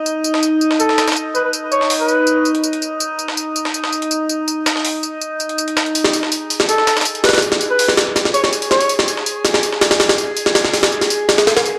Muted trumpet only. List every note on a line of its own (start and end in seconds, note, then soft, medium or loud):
0.80 1.08 A4 medium
1.35 1.41 B4 medium
1.44 1.50 B4 medium
1.72 1.94 C#5 medium
2.00 2.51 B4 medium
6.68 6.96 A4 medium
7.24 7.30 B4 medium
7.33 7.39 B4 medium
7.70 7.92 B4 medium
8.34 8.40 C#5 medium
8.44 8.49 C#5 medium
8.70 8.93 C#5 medium